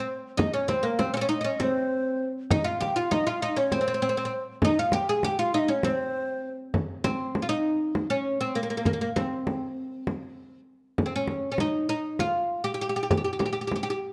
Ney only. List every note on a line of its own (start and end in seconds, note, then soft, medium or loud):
0.00 0.17 C5 medium
0.39 0.53 D#5 medium
0.55 0.72 C#5 medium
0.71 0.87 C5 medium
0.85 1.03 A#4 medium
1.01 1.17 C5 medium
1.16 1.22 C#5 medium
1.22 1.31 C#5 medium
1.29 1.62 D#5 medium
1.60 2.28 C5 medium
2.52 2.69 D#5 medium
2.67 2.84 F5 medium
2.82 2.99 G5 medium
2.98 3.15 F5 medium
3.14 3.31 D#5 medium
3.29 3.44 F5 medium
3.42 3.61 D#5 medium
3.60 3.75 C#5 medium
3.74 4.41 C5 loud
4.64 4.81 D#5 medium
4.80 4.96 F5 medium
4.94 5.10 G5 medium
5.08 5.26 G#5 medium
5.24 5.41 G5 medium
5.39 5.57 F5 medium
5.55 5.72 D#5 medium
5.70 5.86 C#5 medium
5.85 6.52 C5 medium